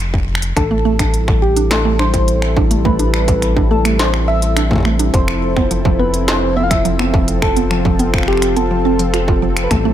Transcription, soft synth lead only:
0.56 A4
1.42 G4
1.71 A4
1.99 C5
2.85 B4
3.71 A4
3.99 C5
4.28 E5
5.14 C5
5.99 B4
6.28 C5
6.57 E5
6.63 F5
6.71 E5
7.42 A4
8.28 G4
8.57 A4
9.64 B4
9.71 A4

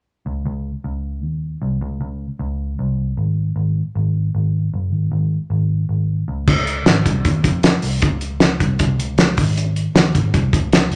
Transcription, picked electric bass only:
0.26 C#2
0.46 C#2
0.84 C#2
1.23 D#2
1.62 C2
1.81 C#2
2.01 C#2
2.39 C#2
2.79 C2
3.17 G#1
3.56 G#1
3.95 G#1
4.35 G#1
4.74 F#1
4.92 G#1
5.12 G#1
5.50 G#1
5.89 G#1
6.28 C#2
6.48 C#2
6.86 G#1
7.05 C2
7.25 D#2
7.44 F2
7.83 C2
8.02 C#2
8.60 C2
8.80 C2
8.98 C#2
9.18 C#2
9.38 G#1
9.95 D#2
10.14 G#1
10.34 C2
10.53 C#2
10.91 F#1

